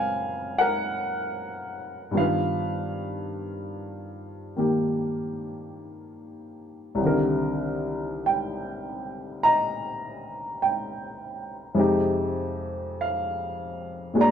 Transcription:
0.00 2.14 F#2 soft
0.00 2.14 C#3 soft
0.00 2.13 F3 soft
0.00 2.15 A#3 soft
0.00 2.16 C4 soft
0.00 2.16 G#4 soft
0.00 0.59 A#4 soft
0.00 2.17 F5 medium
0.00 0.54 G#5 medium
0.58 2.13 A#4 medium
0.58 2.12 F#5 medium
2.11 6.97 G2 soft
2.11 4.55 D#3 soft
2.11 6.98 F3 soft
2.11 6.99 B3 soft
2.17 7.00 F4 medium
2.17 4.54 B4 soft
2.17 4.53 F5 medium
4.56 6.99 D#3 soft
4.56 6.99 A#3 soft
4.56 7.00 G4 soft
6.95 11.76 C2 soft
6.99 11.74 C3 soft
6.99 11.79 D#3 soft
7.04 11.81 D3 soft
7.04 11.82 A#4 soft
8.26 9.46 G5 medium
9.43 11.77 D#5 medium
9.43 10.57 A#5 medium
10.62 11.76 G5 medium
11.75 14.14 F2 soft
11.75 14.15 C3 soft
11.75 14.14 G#3 soft
11.79 14.16 D#4 soft
11.79 14.17 G4 medium
13.01 14.21 F5 medium
14.14 14.31 A#2 soft
14.14 14.31 G#3 soft
14.14 14.31 A#3 soft
14.14 14.31 D4 soft
14.14 14.31 F#4 soft
14.14 14.31 G#4 soft
14.21 14.31 D5 medium
14.21 14.31 A#5 medium

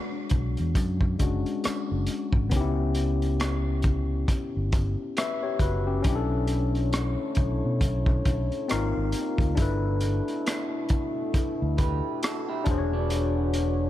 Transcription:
0.00 1.18 G#3 medium
0.00 1.17 D4 medium
0.00 1.18 F#4 medium
0.00 1.16 C#5 medium
0.30 0.55 B1 medium
0.30 kick medium
0.30 closed hi-hat soft
0.57 0.77 E2 loud
0.57 closed hi-hat soft
0.75 1.15 F#2 medium
0.75 kick medium
0.75 closed hi-hat medium
1.01 kick medium
1.19 1.43 F#1 medium
1.19 2.52 G#3 medium
1.19 2.51 C#4 soft
1.19 2.53 D4 soft
1.19 2.53 F#4 medium
1.19 kick medium
1.19 closed hi-hat medium
1.46 closed hi-hat soft
1.64 muted fingered electric bass stroke soft
1.64 cross-stick loud
1.64 closed hi-hat medium
1.92 2.07 F#1 medium
2.07 closed hi-hat medium
2.33 2.53 G#1 medium
2.33 kick medium
2.50 4.25 C#2 medium
2.50 5.11 B3 medium
2.50 5.13 C#4 medium
2.50 kick loud
2.50 closed hi-hat medium
2.54 2.61 D#4 medium
2.54 5.15 G4 medium
2.61 5.17 E4 medium
2.95 closed hi-hat medium
3.22 closed hi-hat soft
3.40 cross-stick loud
3.40 closed hi-hat medium
3.82 kick medium
3.82 closed hi-hat soft
4.28 muted fingered electric bass stroke soft
4.28 kick medium
4.28 closed hi-hat medium
4.57 4.94 G1 medium
4.72 kick medium
4.72 closed hi-hat medium
5.17 5.42 B4 soft
5.17 5.42 E5 medium
5.17 cross-stick loud
5.17 closed hi-hat medium
5.43 5.61 G4 soft
5.43 5.60 C#5 medium
5.59 6.00 F#1 medium
5.59 5.86 F#4 medium
5.59 5.85 B4 medium
5.59 kick medium
5.59 closed hi-hat medium
5.87 6.01 C#4 medium
5.87 6.08 G4 medium
6.02 7.15 B1 medium
6.02 8.67 D3 medium
6.02 8.67 A3 medium
6.02 8.64 C#4 medium
6.02 8.65 D4 medium
6.02 8.67 E4 medium
6.02 8.67 C#5 medium
6.02 kick loud
6.02 closed hi-hat medium
6.07 8.67 E4 medium
6.07 6.15 G4 medium
6.15 8.71 A4 medium
6.47 closed hi-hat medium
6.75 closed hi-hat soft
6.93 cross-stick loud
6.93 closed hi-hat medium
7.35 7.60 B1 medium
7.35 kick medium
7.35 closed hi-hat soft
7.65 7.81 B2 medium
7.81 8.21 B1 medium
7.81 kick medium
7.81 closed hi-hat medium
8.06 kick medium
8.25 8.49 B1 medium
8.25 kick medium
8.25 closed hi-hat medium
8.52 closed hi-hat soft
8.68 8.93 G#1 medium
8.68 9.57 C3 medium
8.68 9.57 A#3 medium
8.68 9.57 C4 medium
8.68 9.58 D#4 medium
8.68 9.57 F4 medium
8.68 9.58 F4 medium
8.68 9.59 A#4 medium
8.68 cross-stick loud
8.68 closed hi-hat medium
8.97 9.13 G#1 medium
9.12 closed hi-hat medium
9.38 9.56 D2 medium
9.38 kick medium
9.38 closed hi-hat soft
9.55 10.20 G1 loud
9.55 12.64 B2 medium
9.55 12.64 A3 medium
9.55 12.61 D4 medium
9.55 12.62 E4 medium
9.55 12.64 E4 medium
9.55 kick loud
9.55 closed hi-hat medium
9.60 12.64 A4 medium
9.60 12.65 B4 medium
10.01 closed hi-hat medium
10.28 closed hi-hat soft
10.47 cross-stick loud
10.47 closed hi-hat medium
10.89 kick medium
10.89 closed hi-hat soft
11.34 muted fingered electric bass stroke soft
11.34 kick medium
11.34 closed hi-hat medium
11.62 12.00 D2 medium
11.78 12.21 G4 medium
11.78 12.20 B4 medium
11.78 kick medium
11.78 closed hi-hat medium
12.23 12.48 F#4 medium
12.23 12.47 A4 medium
12.23 cross-stick loud
12.23 closed hi-hat medium
12.49 12.66 E4 medium
12.49 12.66 G4 medium
12.64 13.90 E1 medium
12.64 13.90 D3 medium
12.64 13.90 G#3 medium
12.64 13.90 D4 medium
12.64 12.92 D4 medium
12.64 13.90 F#4 medium
12.64 13.90 C#5 medium
12.64 kick loud
12.64 closed hi-hat medium
12.68 12.92 F#4 medium
12.68 13.90 G#4 medium
12.68 12.76 C5 medium
12.78 13.90 C#5 medium
12.93 13.90 B3 medium
12.93 13.90 D4 medium
13.10 closed hi-hat medium
13.54 closed hi-hat medium

